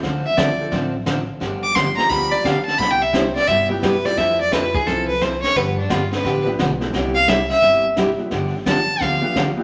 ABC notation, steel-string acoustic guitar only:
X:1
M:4/4
L:1/16
Q:"Swing" 1/4=174
K:Gmix
V:1 name="Steel-string acoustic guitar"
[D,F,CDA]2 z2 [D,F,CDA] z3 [D,F,CDA]2 z2 [D,F,CDA] z3 | [D,F,B,DG]2 z2 [D,F,B,DG] z3 [D,F,B,DG]2 z2 [D,F,B,DG] z3 | [C,G,B,EG]2 z2 [C,G,B,EG] z3 [C,G,B,EG]2 z2 [C,G,B,EG] z3 | [F,CEA]2 z2 [F,CEA] z3 [F,CEA]2 z2 [F,CEA] z3 |
[D,F,B,DG]2 z2 [D,F,B,DG] z3 [D,F,B,DG]2 z2 [D,F,B,DG] z3 | [C,G,B,EG]2 z2 [C,G,B,EG] z3 [C,G,B,EG]2 z2 [C,G,B,EG] z3 | [D,F,B,DG]2 z2 [D,F,B,DG] z3 [D,F,B,DG]2 z2 [D,F,B,DG] z3 |]